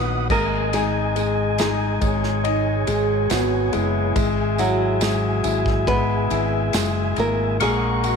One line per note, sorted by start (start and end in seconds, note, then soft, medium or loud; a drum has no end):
0.00 0.28 A#1 medium
0.00 0.32 B2 medium
0.00 0.27 D#3 medium
0.00 0.32 F#3 medium
0.00 0.26 B3 medium
0.00 0.27 B3 medium
0.00 0.28 B4 medium
0.00 0.31 B4 loud
0.00 0.28 F#5 medium
0.00 0.28 D#6 medium
0.30 1.98 G#1 medium
0.30 1.15 G#3 medium
0.30 0.71 A#3 medium
0.30 4.13 G#4 medium
0.30 0.74 A#4 medium
0.30 2.01 D#5 medium
0.30 7.57 G#5 medium
0.30 kick loud
0.30 tambourine soft
0.30 crash medium
0.73 1.56 G#3 medium
0.73 1.58 D#4 medium
0.73 1.58 G#4 medium
0.73 ride medium
0.73 tambourine soft
1.16 2.00 G#3 medium
1.16 ride soft
1.16 tambourine soft
1.58 2.85 G#3 medium
1.58 3.27 D#4 medium
1.58 2.84 G#4 medium
1.58 snare loud
1.58 ride medium
1.58 tambourine medium
2.01 2.84 G#1 medium
2.01 2.86 G#3 medium
2.01 4.15 C#5 medium
2.01 kick medium
2.01 ride medium
2.01 tambourine soft
2.24 snare soft
2.44 2.85 D#4 loud
2.44 4.12 D#5 medium
2.44 ride medium
2.87 3.28 G#1 medium
2.87 3.71 G#3 medium
2.87 3.31 G#4 loud
2.87 ride medium
2.87 tambourine soft
3.30 3.71 G#1 medium
3.30 4.13 B3 medium
3.30 3.73 F#4 loud
3.30 snare loud
3.30 ride medium
3.30 tambourine medium
3.73 4.13 F#1 medium
3.73 4.14 G#3 medium
3.73 4.37 E4 medium
3.73 ride medium
3.73 tambourine soft
4.16 5.41 G#1 medium
4.16 5.00 G#3 medium
4.16 7.58 G#4 medium
4.16 7.58 E5 medium
4.16 kick loud
4.16 ride medium
4.16 tambourine soft
4.58 5.84 F#3 medium
4.58 5.43 E4 medium
4.58 5.84 F#4 medium
4.58 ride medium
4.58 tambourine soft
5.01 5.87 G#3 medium
5.01 snare medium
5.01 ride medium
5.01 tambourine medium
5.44 6.27 G#1 medium
5.44 6.29 E4 medium
5.44 ride medium
5.44 tambourine soft
5.66 kick loud
5.66 snare soft
5.87 6.73 G#3 medium
5.87 6.71 B3 medium
5.87 6.70 B4 loud
5.87 kick medium
5.87 ride medium
6.30 6.71 G#1 loud
6.30 7.16 E4 medium
6.30 ride medium
6.30 tambourine soft
6.73 7.15 F#1 loud
6.73 7.58 G#3 medium
6.73 snare loud
6.73 ride medium
6.73 tambourine medium
7.16 7.58 G#1 medium
7.16 7.59 A#3 medium
7.16 7.60 E4 medium
7.16 7.59 A#4 loud
7.16 ride medium
7.16 tambourine soft
7.60 8.16 A#1 loud
7.60 8.16 G#3 medium
7.60 8.16 A#3 medium
7.60 8.16 G#4 loud
7.60 8.16 A#4 medium
7.60 8.16 F#5 medium
7.60 8.16 C#6 medium
7.60 ride medium
7.60 tambourine medium
8.04 8.16 F#4 medium
8.04 ride medium
8.04 tambourine soft